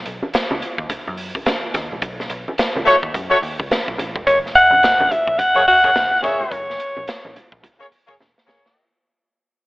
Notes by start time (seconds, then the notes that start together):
0.05 B1, closed hi-hat
0.23 high conga
0.34 snare, closed hi-hat
0.51 C#2, muted conga, high conga
0.62 closed hi-hat
0.78 D#2, kick
0.90 muted picked electric bass stroke, kick, closed hi-hat, muted conga, low conga
1.07 F#2, muted conga
1.17 open hi-hat
1.35 kick, high conga
1.46 snare, closed hi-hat, muted conga, high conga
1.74 D#2, kick, snare, closed hi-hat, high conga
1.92 A#1, low conga
2.02 B1, kick, closed hi-hat, muted conga
2.20 snare, muted conga
2.30 B1, closed hi-hat
2.48 high conga
2.58 snare, closed hi-hat
2.75 C#2, muted conga, high conga
2.86 A3 F#4 C#5, closed hi-hat
3.03 D#2, kick
3.14 F#2, kick, closed hi-hat, muted conga, low conga
3.30 A3 F#4 C#5
3.42 D#2, open hi-hat
3.59 C#2, kick, high conga
3.71 snare, closed hi-hat, muted conga, high conga
3.88 B1, kick, muted conga
3.98 A1, closed hi-hat, high conga
4.15 F1, kick, low conga
4.27 F#1 C#5, kick, closed hi-hat
4.46 snare
4.55 F#5, closed hi-hat
4.70 A#1, high conga
4.83 snare, closed hi-hat, muted conga
4.98 A1, muted conga, high conga
5.11 E5, closed hi-hat, low conga
5.27 A#1, kick
5.39 F#5, kick, closed hi-hat, muted conga, low conga
5.55 A#3 G#4 C#5
5.66 F#5, muted picked electric bass stroke, open hi-hat
5.84 F#1 A#3 G#4 C#5, kick, high conga
5.95 E1, snare, closed hi-hat, muted conga, high conga
6.11 muted conga
6.22 F1 A#3 G#4 C#5 E5, kick, snare, closed hi-hat, high conga
6.40 low conga
6.45 E5
6.51 F#1 C#5, kick, closed hi-hat, muted conga
6.70 snare
6.80 closed hi-hat
6.97 A#1, high conga
7.08 snare, closed hi-hat, muted conga
7.25 A1, high conga
7.36 closed hi-hat, low conga
7.52 A#1, kick
7.63 kick, closed hi-hat, low conga
7.79 A#3 G#4 C#5, muted conga
7.92 muted picked electric bass stroke, open hi-hat
8.08 F#1 A#3 G#4 C#5, kick, high conga
8.20 E1, snare, muted conga, high conga
8.38 snare
8.47 F1 A#3 G#4 C#5, snare, high conga
8.66 snare, low conga